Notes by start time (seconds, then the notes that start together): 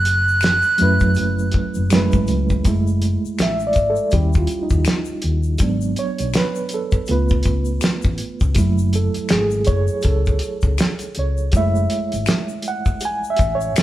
Already playing: F#1 F#6
0.05 closed hi-hat, shaker
0.28 shaker
0.41 finger snap, snare, closed hi-hat, shaker
0.62 shaker
0.78 F#2 F#3 A3 C#4 E4, closed hi-hat, shaker
0.82 B4
1.00 F#2, kick, shaker
1.15 F#1, closed hi-hat, shaker
1.39 shaker
1.51 kick, closed hi-hat
1.74 F#1, shaker
1.90 F#3 G#3 C#4 E4, finger snap, snare, closed hi-hat, shaker
1.95 A3 B4
2.12 G#1, kick, shaker
2.27 C#2, closed hi-hat, shaker
2.49 kick, shaker
2.64 F#1 G#3 A3 E4, kick, closed hi-hat, shaker
2.87 shaker
3.02 closed hi-hat, shaker
3.25 muted fingered electric bass stroke, shaker
3.39 A1 E5, finger snap, snare, closed hi-hat, shaker
3.60 shaker
3.67 D5
3.73 G#1, kick, closed hi-hat, shaker
3.90 A4
3.96 shaker
4.11 D#2 G3 C#4 E4 G4, kick, closed hi-hat, shaker
4.33 kick, shaker
4.38 F4
4.47 closed hi-hat, shaker
4.63 D#4
4.70 D#2, kick, shaker
4.85 finger snap, snare, closed hi-hat, shaker
5.05 shaker
5.22 D#2, closed hi-hat
5.43 shaker
5.58 G#1 F#3 B3 D4, kick, closed hi-hat, shaker
5.81 shaker
5.96 C#5, closed hi-hat, shaker
6.18 B1, closed hi-hat, shaker
6.34 B4, finger snap, snare, closed hi-hat, shaker
6.55 shaker
6.69 closed hi-hat, shaker
6.74 A4
6.92 kick, shaker
7.06 C#2 A3 B3 F4, closed hi-hat, shaker
7.11 B4
7.29 kick, shaker
7.43 C#2, kick, closed hi-hat, shaker
7.65 shaker
7.81 finger snap, snare, closed hi-hat, shaker
8.02 A1, kick, shaker
8.18 closed hi-hat
8.40 C#2, kick, shaker
8.55 F#1 F#3 A3 E4, kick, closed hi-hat, shaker
8.78 shaker
8.93 A4, closed hi-hat, shaker
9.14 muted fingered electric bass stroke, closed hi-hat, shaker
9.29 G#1 G#4, finger snap, snare, closed hi-hat, shaker
9.51 shaker
9.65 F#1 C#5, kick, closed hi-hat, shaker
9.87 shaker
10.02 C#2 A4, kick, closed hi-hat, shaker
10.26 kick, shaker
10.39 closed hi-hat, shaker
10.61 C#2, kick, shaker
10.78 finger snap, snare, closed hi-hat, shaker
10.99 closed hi-hat, shaker
11.15 C#2, closed hi-hat
11.19 C#5
11.37 shaker
11.52 F#1 G#3 A3, kick, closed hi-hat, shaker
11.56 E4 E5
11.76 shaker
11.90 closed hi-hat, shaker
12.12 G#1, closed hi-hat, shaker
12.26 finger snap, snare, closed hi-hat, shaker
12.49 shaker
12.62 closed hi-hat, shaker
12.68 F#5
12.85 kick, shaker
13.01 closed hi-hat, shaker
13.05 G#5
13.24 shaker
13.30 E5
13.36 A1, kick, closed hi-hat, shaker
13.55 C#5
13.61 shaker
13.76 A4, finger snap, snare, closed hi-hat, shaker